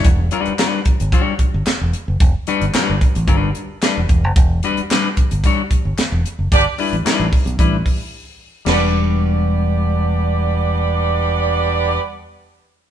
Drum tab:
CC |----------------|----------------|----------------|----------------|
HH |x-xxx-xxx-x-x-x-|x-xxx-xxx-x-x-x-|x-xxx-xxx-x-x-x-|x-oxx-oxx-o-----|
CP |----x-------x---|----x-------x---|----x-------x---|----x-----------|
SD |----o-------o---|----o-------o---|----o-------o---|----o-----------|
BD |o-----o-o-o-----|o-----o-o-----o-|o-----o-o-o-----|o-----o-o-o-----|

CC |x---------------|----------------|
HH |----------------|----------------|
CP |----------------|----------------|
SD |o---------------|----------------|
BD |----------------|----------------|